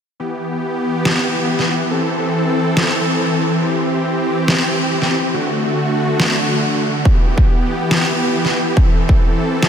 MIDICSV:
0, 0, Header, 1, 3, 480
1, 0, Start_track
1, 0, Key_signature, 1, "minor"
1, 0, Tempo, 428571
1, 220, Time_signature, 4, 2, 24, 8
1, 10848, End_track
2, 0, Start_track
2, 0, Title_t, "Supersaw synth"
2, 0, Program_c, 0, 81
2, 220, Note_on_c, 0, 52, 80
2, 221, Note_on_c, 0, 59, 73
2, 221, Note_on_c, 0, 67, 87
2, 2121, Note_off_c, 0, 59, 0
2, 2121, Note_off_c, 0, 67, 0
2, 2140, Note_on_c, 0, 60, 74
2, 2140, Note_on_c, 0, 69, 87
2, 4041, Note_off_c, 0, 60, 0
2, 4041, Note_off_c, 0, 69, 0
2, 4059, Note_on_c, 0, 67, 89
2, 4060, Note_on_c, 0, 60, 72
2, 5935, Note_off_c, 0, 52, 0
2, 5961, Note_off_c, 0, 60, 0
2, 5961, Note_off_c, 0, 67, 0
2, 5980, Note_on_c, 0, 50, 77
2, 5980, Note_on_c, 0, 57, 72
2, 5980, Note_on_c, 0, 66, 89
2, 7881, Note_off_c, 0, 50, 0
2, 7881, Note_off_c, 0, 57, 0
2, 7881, Note_off_c, 0, 66, 0
2, 7901, Note_on_c, 0, 52, 78
2, 7901, Note_on_c, 0, 59, 74
2, 7901, Note_on_c, 0, 67, 88
2, 9801, Note_off_c, 0, 59, 0
2, 9801, Note_off_c, 0, 67, 0
2, 9820, Note_on_c, 0, 69, 86
2, 10848, Note_off_c, 0, 52, 0
2, 10848, Note_off_c, 0, 69, 0
2, 10848, End_track
3, 0, Start_track
3, 0, Title_t, "Drums"
3, 1180, Note_on_c, 9, 38, 114
3, 1292, Note_off_c, 9, 38, 0
3, 1781, Note_on_c, 9, 38, 36
3, 1893, Note_off_c, 9, 38, 0
3, 3100, Note_on_c, 9, 38, 119
3, 3212, Note_off_c, 9, 38, 0
3, 5020, Note_on_c, 9, 38, 122
3, 5132, Note_off_c, 9, 38, 0
3, 5621, Note_on_c, 9, 38, 37
3, 5733, Note_off_c, 9, 38, 0
3, 6940, Note_on_c, 9, 38, 122
3, 7052, Note_off_c, 9, 38, 0
3, 7900, Note_on_c, 9, 36, 116
3, 8012, Note_off_c, 9, 36, 0
3, 8261, Note_on_c, 9, 36, 103
3, 8373, Note_off_c, 9, 36, 0
3, 8860, Note_on_c, 9, 38, 118
3, 8972, Note_off_c, 9, 38, 0
3, 9462, Note_on_c, 9, 38, 35
3, 9574, Note_off_c, 9, 38, 0
3, 9820, Note_on_c, 9, 36, 114
3, 9932, Note_off_c, 9, 36, 0
3, 10181, Note_on_c, 9, 36, 97
3, 10293, Note_off_c, 9, 36, 0
3, 10780, Note_on_c, 9, 38, 111
3, 10848, Note_off_c, 9, 38, 0
3, 10848, End_track
0, 0, End_of_file